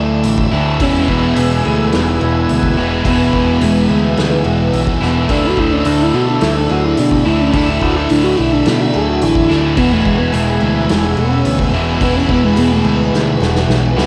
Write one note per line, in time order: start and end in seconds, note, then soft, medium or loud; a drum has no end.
0.00 0.21 D2 medium
0.00 0.50 D3 medium
0.00 0.80 D3 medium
0.00 0.47 A3 medium
0.00 0.51 A3 loud
0.00 0.79 A3 medium
0.00 0.51 D4 loud
0.00 0.79 D4 medium
0.00 0.51 E4 loud
0.00 0.80 E4 medium
0.00 0.52 G#4 medium
0.00 0.77 D5 medium
0.00 0.76 E5 medium
0.00 5.26 E6 medium
0.23 0.49 A1 medium
0.23 open hi-hat medium
0.38 kick medium
0.52 0.77 D2 medium
0.52 0.80 D3 medium
0.52 0.79 A3 medium
0.52 0.79 D4 medium
0.52 0.82 E4 medium
0.79 1.04 E1 medium
0.79 2.75 E2 medium
0.79 1.67 E2 medium
0.79 2.75 B2 medium
0.79 1.64 B2 medium
0.79 2.79 E3 loud
0.79 1.65 E3 medium
0.79 2.76 G#3 medium
0.79 2.76 B3 loud
0.79 1.10 C#4 loud
0.79 2.24 E4 medium
0.79 2.77 E4 loud
0.79 5.26 B4 medium
0.79 14.06 E5 medium
0.79 5.26 G#5 medium
0.79 kick loud
0.79 open hi-hat medium
1.08 1.33 E1 medium
1.08 1.66 B3 loud
1.08 kick medium
1.36 1.61 E1 medium
1.36 1.65 G#4 medium
1.36 open hi-hat medium
1.65 1.90 D2 medium
1.65 3.05 E2 medium
1.65 3.04 B2 medium
1.65 3.08 E3 medium
1.65 1.94 A3 medium
1.65 2.20 G#4 medium
1.92 2.18 E1 medium
1.92 2.77 B3 medium
1.92 snare loud
1.92 open hi-hat soft
2.21 2.46 E1 medium
2.21 2.77 F#4 medium
2.49 2.74 D2 medium
2.49 open hi-hat soft
2.63 kick medium
2.77 3.01 E1 medium
2.77 3.03 E2 medium
2.77 3.04 B2 medium
2.77 3.05 E3 medium
2.77 3.04 G#3 medium
2.77 3.04 B3 medium
2.77 3.07 E4 medium
3.05 3.30 E1 medium
3.05 4.99 E2 medium
3.05 3.88 E2 medium
3.05 5.00 B2 medium
3.05 3.88 B2 medium
3.05 5.03 E3 loud
3.05 3.90 E3 medium
3.05 5.01 G#3 medium
3.05 5.01 B3 medium
3.05 3.65 B3 medium
3.05 4.47 E4 medium
3.05 5.00 E4 loud
3.05 kick loud
3.05 open hi-hat soft
3.33 3.58 E1 medium
3.33 kick medium
3.61 3.86 E1 medium
3.61 4.18 G#3 medium
3.61 3.88 G#4 medium
3.61 open hi-hat soft
3.89 4.14 D2 medium
3.89 5.29 E2 medium
3.89 5.29 B2 medium
3.89 5.31 E3 medium
3.89 4.44 G#4 medium
4.17 4.42 D2 medium
4.17 4.70 G#3 medium
4.17 snare medium
4.17 open hi-hat soft
4.44 4.69 E1 medium
4.44 5.01 F#4 medium
4.73 4.98 B1 medium
4.73 5.00 B3 medium
4.73 open hi-hat soft
4.87 kick medium
5.01 5.26 E1 medium
5.01 5.29 E2 medium
5.01 5.29 B2 medium
5.01 5.29 E3 medium
5.01 5.28 G#3 medium
5.01 5.28 B3 medium
5.01 5.31 B3 medium
5.01 5.32 E4 medium
5.01 snare soft
5.29 5.54 D2 medium
5.29 7.24 D3 loud
5.29 6.15 D3 medium
5.29 7.24 A3 medium
5.29 6.14 A3 medium
5.29 5.46 D4 medium
5.29 7.24 D4 medium
5.29 6.13 D4 medium
5.29 7.53 E4 medium
5.29 7.24 E4 loud
5.29 9.74 D5 medium
5.29 14.06 E6 loud
5.29 kick loud
5.29 open hi-hat soft
5.44 5.60 F#4 loud
5.57 5.82 D2 medium
5.57 5.73 E4 medium
5.57 kick medium
5.72 5.88 C#4 medium
5.85 6.10 D2 medium
5.85 6.04 D4 medium
5.85 6.13 A4 medium
5.85 open hi-hat medium
6.02 6.16 E4 medium
6.13 6.38 B2 medium
6.13 7.53 D3 medium
6.13 7.52 A3 medium
6.13 7.52 D4 medium
6.13 6.30 F#4 medium
6.13 6.69 A4 medium
6.29 6.42 D4 medium
6.41 6.66 D2 medium
6.41 6.58 E4 medium
6.41 snare medium
6.41 open hi-hat medium
6.57 6.72 D4 medium
6.70 6.94 D2 medium
6.70 6.85 F#4 loud
6.70 7.26 G#4 medium
6.84 7.00 E4 loud
6.97 7.22 B2 medium
6.97 7.10 D4 medium
6.97 open hi-hat medium
7.11 7.27 D4 medium
7.11 kick medium
7.25 7.50 D2 medium
7.25 7.52 D3 medium
7.25 7.52 A3 medium
7.25 7.52 D4 medium
7.25 7.55 E4 medium
7.25 7.42 E4 loud
7.41 7.57 C#4 medium
7.53 7.78 D2 medium
7.53 9.47 D3 medium
7.53 8.36 D3 medium
7.53 9.48 A3 loud
7.53 8.37 A3 medium
7.53 9.49 D4 loud
7.53 7.71 D4 loud
7.53 8.36 D4 loud
7.53 9.77 E4 medium
7.53 9.48 E4 loud
7.53 14.06 G#5 medium
7.53 kick loud
7.53 open hi-hat soft
7.70 7.84 E4 medium
7.81 8.06 D2 medium
7.81 7.98 F#4 medium
7.81 kick medium
7.96 8.12 E4 loud
8.09 8.34 D2 medium
8.09 8.23 D4 medium
8.09 8.36 A4 medium
8.09 open hi-hat soft
8.24 8.39 F#4 loud
8.37 8.62 B1 medium
8.37 9.77 D3 medium
8.37 9.76 A3 medium
8.37 9.76 D4 medium
8.37 8.54 E4 medium
8.37 8.93 A4 medium
8.53 8.69 D4 medium
8.66 8.91 B2 medium
8.66 8.82 E4 loud
8.66 snare loud
8.66 open hi-hat soft
8.81 8.95 F#4 medium
8.94 9.19 D2 medium
8.94 9.10 G#4 loud
8.94 9.50 G#4 medium
9.08 9.24 F#4 medium
9.21 9.46 A1 medium
9.21 9.77 E4 loud
9.21 open hi-hat soft
9.35 kick medium
9.49 9.74 D2 medium
9.49 9.77 D3 medium
9.49 9.76 A3 medium
9.49 9.76 D4 medium
9.49 9.79 E4 medium
9.49 snare soft
9.76 10.02 E1 loud
9.76 11.71 E2 loud
9.76 10.63 E2 medium
9.76 11.71 B2 medium
9.76 10.60 B2 medium
9.76 11.75 E3 loud
9.76 10.61 E3 loud
9.76 11.72 G#3 loud
9.76 9.94 B3 medium
9.76 11.72 B3 loud
9.76 11.20 E4 medium
9.76 11.73 E4 loud
9.76 14.06 B4 medium
9.76 kick loud
9.76 open hi-hat medium
9.92 10.07 A3 medium
10.05 10.30 E1 medium
10.05 10.19 G#3 medium
10.05 kick medium
10.18 10.34 B3 medium
10.33 10.58 E1 medium
10.33 10.88 G#3 medium
10.33 10.60 G#4 medium
10.33 open hi-hat medium
10.60 10.86 D2 medium
10.60 11.99 E2 medium
10.60 12.00 B2 medium
10.60 12.02 E3 medium
10.60 11.17 G#4 medium
10.88 11.14 E1 medium
10.88 11.19 G#3 medium
10.88 snare loud
10.88 open hi-hat soft
11.17 11.42 E1 medium
11.17 11.73 C#4 loud
11.17 11.73 F#4 medium
11.45 11.70 D2 medium
11.45 open hi-hat soft
11.59 kick medium
11.73 11.97 E1 loud
11.73 11.99 E2 medium
11.73 12.01 B2 medium
11.73 12.02 E3 medium
11.73 12.00 G#3 medium
11.73 12.00 B3 medium
11.73 12.03 E4 medium
12.00 12.25 E1 medium
12.00 12.83 E2 loud
12.00 13.95 E2 medium
12.00 12.84 B2 medium
12.00 13.95 B2 medium
12.00 13.95 E3 loud
12.00 12.84 E3 loud
12.00 13.96 G#3 loud
12.00 13.96 B3 medium
12.00 12.18 B3 loud
12.00 12.57 E4 medium
12.00 13.95 E4 loud
12.00 kick loud
12.00 open hi-hat soft
12.16 12.32 C#4 loud
12.29 12.53 E1 medium
12.29 12.45 B3 loud
12.29 kick medium
12.44 12.59 G#3 medium
12.56 12.81 E1 medium
12.56 12.73 B3 medium
12.56 12.83 G#4 medium
12.56 open hi-hat soft
12.72 12.87 A3 medium
12.85 13.09 D2 medium
12.85 14.06 E2 medium
12.85 14.06 B2 medium
12.85 14.06 E3 medium
12.85 13.69 G#3 medium
12.85 13.40 G#4 medium
13.13 13.37 D2 medium
13.13 snare medium
13.40 13.65 E1 medium
13.40 13.96 F#4 medium
13.40 snare medium
13.55 snare medium
13.69 13.93 B1 medium
13.69 snare medium
13.96 14.06 C#2 medium
13.96 14.06 E2 medium
13.96 14.06 B2 medium
13.96 14.06 E3 medium
13.96 14.06 G#3 medium
13.96 14.06 B3 medium
13.96 14.06 E4 medium
13.96 snare medium